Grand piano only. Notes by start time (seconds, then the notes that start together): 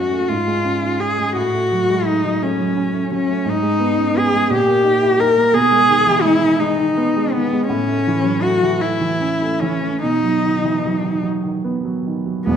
Already playing: F#2 A3 C#4 D#4
0.11 A3
0.29 G#2
0.47 G#3
0.65 C#4
0.83 D#4
1.00 C#4
1.18 G#3
1.35 A2
1.54 A3
1.72 F#3
1.89 G#3
2.06 A3
2.25 F#3
2.41 A3
2.60 F#3
2.77 C#4
2.93 A3
3.12 F#3
3.29 A3
3.45 G#2
3.62 G#3
3.80 B3
3.97 C#4
4.14 B3
4.33 G#3
4.50 A#2
4.67 A#3
4.84 D#4
5.01 E4
5.19 D#4
5.36 A#3
5.54 B2
5.71 G#3
5.89 D#3
6.07 E3
6.24 G#3
6.41 D#3
6.59 G#3
6.79 D#3
6.97 B3
7.16 G#3
7.34 D#3
7.53 G#3
7.69 A2
7.88 A3
8.08 E3
8.24 F#3
8.44 A3
8.63 E3
8.82 A3
9.01 E3
9.21 C#4
9.42 A3
9.62 E3
9.82 A3
10.03 B2
10.23 F#3
10.45 D#3
10.64 E3
10.85 F#3
11.04 D#3
11.23 F#3
11.43 D#3
11.64 B3
11.85 F#3
12.06 D#3
12.26 F#3
12.46 E1 E2